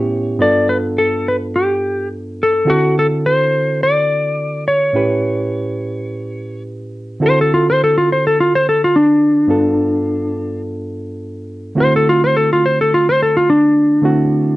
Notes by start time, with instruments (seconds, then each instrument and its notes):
Already playing: reed electric piano A2 B3 C#4 E4 G4, electric slide guitar C#5
0.39 reed electric piano G2 B3 D4 F4 A4, electric slide guitar D5
0.69 electric slide guitar B4
0.98 electric slide guitar A4
1.28 electric slide guitar B4
1.56 electric slide guitar G4
2.43 electric slide guitar A4
2.65 reed electric piano D3 C4 E4 F#4 A4
2.70 electric slide guitar F#4
2.99 electric slide guitar A4
3.26 electric slide guitar C5
3.83 electric slide guitar D5
4.68 electric slide guitar C#5
4.93 reed electric piano A2 C#4 E4 G4 B4
7.20 reed electric piano D3 C4 E4 F#4 A4
7.26 electric slide guitar C5
7.41 electric slide guitar A4
7.54 electric slide guitar F4
7.70 electric slide guitar C5
7.84 electric slide guitar A4
7.98 electric slide guitar F4
8.12 electric slide guitar C5
8.27 electric slide guitar A4
8.40 electric slide guitar F4
8.55 electric slide guitar C5
8.69 electric slide guitar A4
8.84 electric slide guitar F4
8.96 electric slide guitar D4
9.47 reed electric piano G2 B3 D4 F4 A4
11.75 reed electric piano D3 A3 C4 E4 F#4
11.80 electric slide guitar C5
11.96 electric slide guitar A4
12.09 electric slide guitar F4
12.24 electric slide guitar C5
12.37 electric slide guitar A4
12.53 electric slide guitar F4
12.66 electric slide guitar C5
12.81 electric slide guitar A4
12.94 electric slide guitar F4
13.09 electric slide guitar C5
13.22 electric slide guitar A4
13.37 electric slide guitar F4
13.50 electric slide guitar D4
14.02 reed electric piano D3 A3 C4 E4 F#4